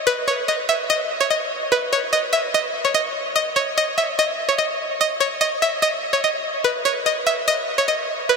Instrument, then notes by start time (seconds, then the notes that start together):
synth pluck
0.07 B4
0.28 C#5
0.48 D#5
0.69 E5
0.90 D#5
1.20 C#5
1.30 D#5
1.72 B4
1.93 C#5
2.13 D#5
2.33 E5
2.54 D#5
2.85 C#5
2.94 D#5
3.36 D#5
3.56 C#5
3.78 D#5
3.98 E5
4.19 D#5
4.49 C#5
4.58 D#5
5.01 D#5
5.20 C#5
5.41 D#5
5.62 E5
5.82 D#5
6.13 C#5
6.24 D#5
6.64 B4
6.85 C#5
7.06 D#5
7.27 E5
7.48 D#5
7.78 C#5
7.88 D#5
8.29 B4